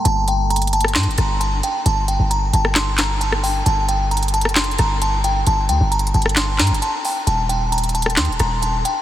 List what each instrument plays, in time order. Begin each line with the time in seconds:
0.05 808-style bass G1, synth bell A5, closed hi-hat
0.28 synth bell G5, closed hi-hat
0.50 synth bell A#5, closed hi-hat
0.56 closed hi-hat
0.62 closed hi-hat
0.67 closed hi-hat
0.73 synth bell A5, closed hi-hat
0.81 cross-stick, closed hi-hat
0.88 closed hi-hat
0.95 808-style bass G2, synth bell C6, snare, clap, closed hi-hat
1.03 808-style bass G1, closed hi-hat
1.11 closed hi-hat
1.18 808-style bass G1, synth bell A#5, cross-stick, closed hi-hat
1.41 synth bell A5, closed hi-hat
1.63 synth bell G5, closed hi-hat
1.86 808-style bass G1, synth bell A5, closed hi-hat
2.08 synth bell G5, closed hi-hat
2.20 808-style bass G1
2.31 synth bell A#5, closed hi-hat
2.53 808-style bass G1, synth bell A5, closed hi-hat
2.65 cross-stick
2.75 synth bell C6, snare, clap, closed hi-hat
2.98 synth bell A#5, snare, clap, closed hi-hat
3.21 synth bell A5, closed hi-hat
3.32 cross-stick
3.44 synth bell G5, open hi-hat
3.66 808-style bass G1, synth bell A5, closed hi-hat
3.89 synth bell G5, closed hi-hat
4.11 synth bell A#5, closed hi-hat
4.17 closed hi-hat
4.23 closed hi-hat
4.28 closed hi-hat
4.34 synth bell A5, closed hi-hat
4.41 808-style bass F#1, cross-stick, closed hi-hat
4.49 closed hi-hat
4.55 synth bell C6, snare, clap, closed hi-hat
4.64 closed hi-hat
4.71 closed hi-hat
4.78 808-style bass G1, synth bell A#5, cross-stick, closed hi-hat
5.02 synth bell A5, closed hi-hat
5.24 synth bell G5, closed hi-hat
5.47 808-style bass G1, synth bell A5, closed hi-hat
5.69 808-style bass D2, synth bell G5, closed hi-hat
5.81 808-style bass G1
5.92 synth bell A#5, closed hi-hat
5.99 closed hi-hat
6.07 closed hi-hat
6.14 808-style bass G1, synth bell A5, closed hi-hat
6.22 cross-stick, closed hi-hat
6.29 closed hi-hat
6.36 synth bell C6, snare, clap, closed hi-hat
6.59 808-style bass G2, synth bell A#5, snare, clap, closed hi-hat
6.67 808-style bass G1, closed hi-hat
6.74 closed hi-hat
6.82 synth bell A5, closed hi-hat
7.05 synth bell G5, open hi-hat
7.27 808-style bass D#1, synth bell A5, closed hi-hat
7.49 synth bell G5, closed hi-hat
7.72 synth bell A#5, closed hi-hat
7.78 closed hi-hat
7.84 closed hi-hat
7.89 closed hi-hat
7.95 synth bell A5, closed hi-hat
8.02 cross-stick, closed hi-hat
8.10 closed hi-hat
8.16 808-style bass D#2, synth bell C6, snare, clap, closed hi-hat
8.25 808-style bass D#1, closed hi-hat
8.32 closed hi-hat
8.39 808-style bass D#1, synth bell A#5, cross-stick, closed hi-hat
8.62 synth bell A5, closed hi-hat
8.85 synth bell G5, closed hi-hat